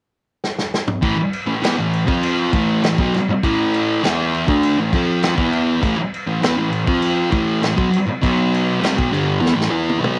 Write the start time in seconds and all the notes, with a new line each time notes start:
0.44 snare
0.59 snare
0.74 snare
0.88 mid tom
1.02 A2 E3, kick, crash
1.16 muted distorted electric guitar stroke
1.33 crash
1.46 A2 E3
1.62 E3 B3, snare, crash
1.78 A2 E3
1.93 crash
2.07 F3 C4 F4, kick
2.23 crash
2.53 A2 E3 A3, kick, crash
2.83 A2 E3, snare, crash
2.98 B2 F#3, kick
3.14 muted distorted electric guitar stroke, snare, crash
3.29 muted distorted electric guitar stroke
3.43 A2 E3 A3, kick, crash
3.74 crash
4.04 E3 B3 E4, snare, crash
4.34 crash
4.47 D3 A3 D4, kick
4.63 crash
4.79 A2 E3
4.93 F3 C4 F4, kick, crash
5.23 snare, crash
5.36 E3 B3 E4, kick
5.53 crash
5.81 A2 E3, kick, crash
5.97 muted distorted electric guitar stroke
6.14 crash
6.27 A2 E3
6.42 E3 B3, snare, crash
6.57 A2 E3
6.73 crash
6.87 F3 C4 F4, kick
7.02 crash
7.32 A2 E3 A3, kick, crash
7.62 A2 E3, snare, crash
7.77 B2 F#3, kick
7.91 muted distorted electric guitar stroke, crash
8.07 muted distorted electric guitar stroke
8.21 B2 F#3 B3, kick, crash
8.54 crash
8.80 C3 G3, crash
8.84 snare
8.96 B2 F#3, kick
9.11 G2 D3 G3, crash
9.40 E3 B3
9.46 snare
9.55 A2 E3
9.61 snare
9.70 E3 B3 E4
9.89 high tom
9.99 B2 F#3 B3
10.04 mid tom